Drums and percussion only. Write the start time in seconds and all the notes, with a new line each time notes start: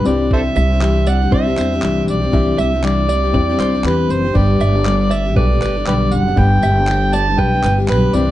0.05 tambourine
0.31 kick
0.56 tambourine
0.81 clap
1.07 tambourine
1.32 kick
1.57 clap, tambourine
1.82 clap
2.08 tambourine
2.33 kick
2.59 tambourine
2.84 clap
3.09 tambourine
3.34 kick
3.60 clap, tambourine
3.84 clap
4.10 tambourine
4.35 kick
4.61 tambourine
4.85 clap
5.11 tambourine
5.36 kick
5.62 clap, tambourine
5.86 clap
6.12 tambourine
6.37 kick
6.63 tambourine
6.87 clap
7.13 tambourine
7.38 kick
7.63 clap, tambourine
7.88 clap
8.14 tambourine